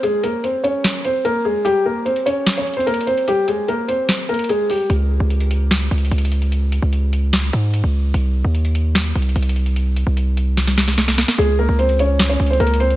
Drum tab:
HH |x-----------x-----------x-----------x-----------x-----------x-----------x-----------------------|x-----------------------x-----x-----x-----------x-----------x---x---x---x---x---x---x-----x-----|x-----------x-----------x-----------x-----------x-----------x--x--x--x--x-----------o-----------|x-----------------------x-----x-----x-----------x-----------x---x---x---x---x---x---x-----x-----|
SD |------------------------------------------------o-----------------------------------------------|------------------------------------------------o-----------------------------------------------|------------------------------------------------o-----------------------------------------------|------------------------------------------------o-----------------------------------------------|

HH |x-----------x-----------x-----------x-----------x-----------x-----------x-----------------------|x-----------------------x-----x-----x-----------x-----------x---x---x---x---x---x---x-----x-----|x-----------x-----------x-----------x-----------x-----------x--x--x--x--x-----------o-----------|x-----------------------x-----x-----x-----------x-----------x---x---x---x---x---x---x-----x-----|
SD |------------------------------------------------o-----------------------------------------------|------------------------------------------------o-----------------------------------------------|------------------------------------------------o-----o-----o-----o-----o-----o-----o-----o-----|------------------------------------------------o-----------------------------------------------|